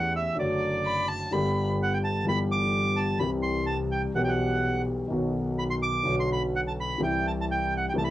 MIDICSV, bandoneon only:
0, 0, Header, 1, 2, 480
1, 0, Start_track
1, 0, Key_signature, 1, "minor"
1, 0, Tempo, 473560
1, 385, Time_signature, 4, 2, 24, 8
1, 8213, End_track
2, 0, Start_track
2, 0, Title_t, "Bandoneon"
2, 0, Program_c, 0, 23
2, 0, Note_on_c, 0, 78, 69
2, 134, Note_off_c, 0, 78, 0
2, 163, Note_on_c, 0, 76, 64
2, 378, Note_off_c, 0, 76, 0
2, 398, Note_on_c, 0, 74, 68
2, 1070, Note_off_c, 0, 74, 0
2, 1852, Note_on_c, 0, 78, 70
2, 1960, Note_off_c, 0, 78, 0
2, 1962, Note_on_c, 0, 79, 69
2, 2011, Note_off_c, 0, 79, 0
2, 2069, Note_on_c, 0, 81, 72
2, 2287, Note_off_c, 0, 81, 0
2, 2319, Note_on_c, 0, 83, 93
2, 2422, Note_off_c, 0, 83, 0
2, 2551, Note_on_c, 0, 86, 91
2, 3005, Note_on_c, 0, 81, 73
2, 3037, Note_off_c, 0, 86, 0
2, 3232, Note_off_c, 0, 81, 0
2, 3236, Note_on_c, 0, 83, 71
2, 3348, Note_off_c, 0, 83, 0
2, 3472, Note_on_c, 0, 84, 74
2, 3704, Note_off_c, 0, 84, 0
2, 3713, Note_on_c, 0, 81, 72
2, 3825, Note_off_c, 0, 81, 0
2, 3970, Note_on_c, 0, 79, 56
2, 4078, Note_off_c, 0, 79, 0
2, 4211, Note_on_c, 0, 78, 64
2, 4276, Note_off_c, 0, 78, 0
2, 4300, Note_on_c, 0, 79, 54
2, 4344, Note_on_c, 0, 78, 61
2, 4361, Note_off_c, 0, 79, 0
2, 4886, Note_off_c, 0, 78, 0
2, 5664, Note_on_c, 0, 83, 80
2, 5715, Note_off_c, 0, 83, 0
2, 5782, Note_on_c, 0, 84, 77
2, 5834, Note_off_c, 0, 84, 0
2, 5905, Note_on_c, 0, 86, 81
2, 6238, Note_off_c, 0, 86, 0
2, 6281, Note_on_c, 0, 84, 78
2, 6383, Note_off_c, 0, 84, 0
2, 6411, Note_on_c, 0, 83, 76
2, 6513, Note_off_c, 0, 83, 0
2, 6647, Note_on_c, 0, 78, 69
2, 6696, Note_off_c, 0, 78, 0
2, 6767, Note_on_c, 0, 81, 74
2, 6815, Note_off_c, 0, 81, 0
2, 6896, Note_on_c, 0, 83, 80
2, 7105, Note_off_c, 0, 83, 0
2, 7127, Note_on_c, 0, 79, 72
2, 7362, Note_off_c, 0, 79, 0
2, 7369, Note_on_c, 0, 81, 74
2, 7418, Note_off_c, 0, 81, 0
2, 7510, Note_on_c, 0, 81, 77
2, 7554, Note_off_c, 0, 81, 0
2, 7615, Note_on_c, 0, 79, 76
2, 7847, Note_off_c, 0, 79, 0
2, 7876, Note_on_c, 0, 78, 62
2, 7964, Note_off_c, 0, 78, 0
2, 7997, Note_on_c, 0, 79, 75
2, 8039, Note_off_c, 0, 79, 0
2, 8090, Note_on_c, 0, 81, 85
2, 8144, Note_off_c, 0, 81, 0
2, 8153, Note_on_c, 0, 83, 76
2, 8213, Note_off_c, 0, 83, 0
2, 8213, End_track
0, 0, End_of_file